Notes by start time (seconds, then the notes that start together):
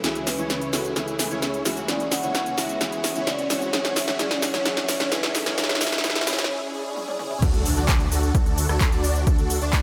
Already playing: C#3 E3 E4, riser
0.03 C#2 E3 G#3 C#4 E4 F#4 G#4, snare, closed hi-hat, cabasa
0.15 closed hi-hat, cabasa
0.27 B4, snare, open hi-hat, cabasa
0.38 C#2 E3 G#3 C#4 E4 C#5, closed hi-hat, cabasa
0.50 snare, closed hi-hat, cabasa
0.62 closed hi-hat, cabasa
0.72 C#2 E3 G#3 C#4 E4 F#4 A4, snare, open hi-hat, cabasa
0.85 closed hi-hat, cabasa
0.96 C#2 E3 C#4 E4 G#4, snare, closed hi-hat, cabasa
1.08 closed hi-hat, cabasa
1.19 snare, open hi-hat, cabasa
1.30 C#2 E3 G#3 C#4 E4 C#5, closed hi-hat, cabasa
1.42 G#4, snare, closed hi-hat, cabasa
1.54 closed hi-hat, cabasa
1.65 C#2 E3 G#3 C#4 E4 F#4, snare, open hi-hat, cabasa
1.77 closed hi-hat, cabasa
1.88 C#2 E3 G#3 C#4 E4 F#4 G#4 D5, snare, closed hi-hat, cabasa
2.00 closed hi-hat, cabasa
2.11 F#5, snare, open hi-hat, cabasa
2.22 C#2 E3 G#3 C#4 E4 C#5, closed hi-hat, cabasa
2.35 snare, closed hi-hat, cabasa
2.46 closed hi-hat, cabasa
2.57 C#2 E3 G#3 C#4 E4 F#4 E5, snare, open hi-hat, cabasa
2.69 closed hi-hat, cabasa
2.80 C#2 E3 G#3 C#4 E4 G#4, snare, closed hi-hat, cabasa
2.92 closed hi-hat, cabasa
3.04 snare, open hi-hat, cabasa
3.15 C#2 E3 G#3 C#4 E4 C#5, closed hi-hat, cabasa
3.27 D5, snare, closed hi-hat, cabasa
3.39 closed hi-hat, cabasa
3.50 C#2 E3 G#3 C#4 E4 F#4 C#5, snare, open hi-hat, cabasa
3.62 closed hi-hat, cabasa
3.73 F#1 E3 F#3 G#3 C#4 E4 G#4 C#5, snare, closed hi-hat, cabasa
3.85 snare, closed hi-hat, cabasa
3.96 E5, snare, open hi-hat, cabasa
4.07 F#1 E3 G#3 C#4 E4 C#5, snare, closed hi-hat, cabasa
4.19 F#1 E3 G#3 C#4 E4 G#4 D5, snare, closed hi-hat, cabasa
4.31 snare, closed hi-hat, cabasa
4.42 C#5, snare, open hi-hat, cabasa
4.53 F#1 E3 G#3 C#4 E4 C#5, snare, closed hi-hat, cabasa
4.65 F#1 E3 G#3 C#4 E4 G#4, snare, closed hi-hat, cabasa
4.77 snare, closed hi-hat, cabasa
4.89 snare, open hi-hat, cabasa
4.99 F#1 E3 G#3 C#4 E4 C#5, snare, closed hi-hat, cabasa
5.11 F#1 E3 G#3 C#4 E4 G#4 B4, snare, closed hi-hat, cabasa
5.23 snare, closed hi-hat, cabasa
5.35 A4, snare, open hi-hat, cabasa
5.46 F#1 E3 G#3 C#4 E4 C#5, snare, closed hi-hat, cabasa
5.57 F#1 E3 G#3 C#4 E4 G#4 C#5, snare, closed hi-hat, cabasa
5.64 snare
5.69 snare, closed hi-hat, cabasa
5.75 snare
5.80 F#1 E3 G#3 C#4 E4 G#4 E5, snare, open hi-hat, cabasa
5.87 snare
5.92 snare, closed hi-hat, cabasa
5.98 snare
6.03 F#1 E3 G#3 C#4 E4 G#4, snare, closed hi-hat, cabasa
6.10 snare
6.15 snare, closed hi-hat, cabasa
6.21 snare
6.26 F#1 E3 G#3 C#4 E4 G#4 C#5, snare, open hi-hat, cabasa
6.33 snare
6.39 snare, closed hi-hat, cabasa
6.44 snare
6.50 C#4 E4 G#4, swell
6.73 C#4 E4 G#4
6.96 C#4 E4 G#4, high tom
7.08 high tom
7.19 C#4 E4 G#4, mid tom
7.31 mid tom
7.42 D2 D4 F#4 A4, kick, closed hi-hat, crash, impact, cabasa
7.54 closed hi-hat, cabasa
7.65 open hi-hat, cabasa
7.77 D2 D4 F#4 D5, closed hi-hat, cabasa
7.89 kick, clap, closed hi-hat, cabasa
8.00 closed hi-hat, cabasa
8.12 D2 D4 F#4 A4, open hi-hat, cabasa
8.23 closed hi-hat, cabasa
8.35 D2 D4 F#4 A4, kick, closed hi-hat, cabasa
8.46 closed hi-hat, cabasa
8.58 open hi-hat, cabasa
8.69 D2 D4 F#4 A4, cross-stick, closed hi-hat, cabasa
8.81 kick, clap, closed hi-hat, cabasa
8.92 D2 D4 F#4 D5, closed hi-hat, cabasa
9.04 open hi-hat, cabasa
9.15 closed hi-hat, cabasa
9.27 D2 D4 F#4 A4, kick, closed hi-hat, cabasa
9.38 closed hi-hat, cabasa
9.50 open hi-hat, cabasa
9.62 D2 D4 F#4 D5, closed hi-hat, cabasa
9.73 kick, clap, closed hi-hat, cabasa